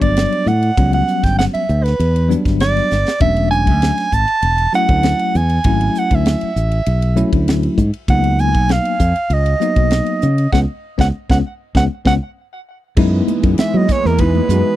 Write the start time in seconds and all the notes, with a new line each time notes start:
Already playing: F#3 G3 B3 D4
0.02 G1 D5, kick, ride
0.17 snare, ride
0.32 ride
0.46 A2 F#5, hi-hat pedal
0.63 ride
0.77 C#2 F#3 G3 B3 C#4, kick, ride
0.93 F#5, ride
1.08 hi-hat pedal
1.23 G1 G5, kick, snare, ride
1.39 F#5, snare, ride
1.54 E5, muted fingered electric bass stroke, ride
1.69 D2, hi-hat pedal
1.83 B4, snare, ride
2.00 E2, ride
2.16 ride
2.29 F#3 G3 B3 D4, hi-hat pedal
2.45 G1, kick, snare, ride
2.60 D5, snare, ride
2.77 snare, ride
2.91 G1, snare, hi-hat pedal
3.08 snare
3.20 E1 F#3 A3 C#4 D4 E5, kick, ride
3.37 ride
3.51 G#5, hi-hat pedal
3.67 D2, kick, ride
3.82 snare, ride
3.98 snare, ride
4.12 G#1 A5, kick, hi-hat pedal
4.28 ride
4.42 E1, ride
4.58 ride
4.73 F#3 A3 C#4 E4 F#5, hi-hat pedal
4.88 D2, kick, ride
5.03 snare, ride
5.19 ride
5.34 E2 G#5, hi-hat pedal
5.50 ride
5.64 G#1 F#3 A3 C#4 E4, kick, ride
5.81 ride
5.95 F#5, hi-hat pedal
6.11 D2, kick, ride
6.15 E5
6.26 snare, ride
6.41 muted fingered electric bass stroke, ride
6.56 A1, hi-hat pedal
6.72 ride
6.86 B1, ride
7.02 ride
7.16 F#3 A3 C#4 E4, hi-hat pedal
7.33 D2, kick, ride
7.48 snare, ride
7.63 ride
7.78 G#2, kick, hi-hat pedal
7.94 ride
8.08 C#2 F#3 A#3 B3 D#4 F#5, kick, ride
8.24 ride
8.39 G#5, hi-hat pedal
8.54 B1, kick, ride
8.69 F5, snare, ride
8.85 ride
9.00 F2, kick, hi-hat pedal
9.16 ride
9.30 C#2 D#5, ride
9.46 ride
9.60 F#3 A#3 B3 D#4, hi-hat pedal
9.76 B1, kick, ride
9.91 snare, ride
10.06 ride
10.22 C#3, hi-hat pedal
10.38 ride
10.52 C#2 G#3 B3 C#4 F#5, kick, snare
10.98 C#2 G#3 B3 C#4 F#5, kick, snare
11.29 C#2 G#3 B3 C#4 F#5, kick, snare
11.75 C#2 G#3 B3 C#4 F#5, kick, snare
12.05 C#2 G#3 B3 C#4 F#5, kick, snare
12.96 F#2 E3 G#3 B3 D#4 E4, kick, crash
13.28 hi-hat pedal, ride, high conga
13.43 F#2, kick, ride
13.58 E5, muted fingered electric bass stroke, snare, ride
13.74 F#3 D#5, high conga
13.88 C#5, kick, snare, hi-hat pedal, ride, low conga
14.04 E2 A#4, snare, high conga
14.18 G#3 B3 D#4 E4 B4, kick, ride, high conga
14.35 high conga
14.49 F#2 G#3 B3 D#4 F#4, hi-hat pedal, ride, low conga